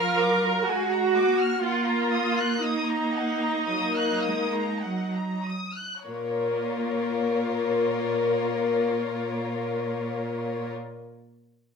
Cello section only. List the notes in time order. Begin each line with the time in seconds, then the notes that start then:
Already playing: F3
0.20 F#3
0.67 G#3
1.14 A#3
1.64 A#3
3.69 F#3
4.25 G#3
4.84 F#3
6.07 A#2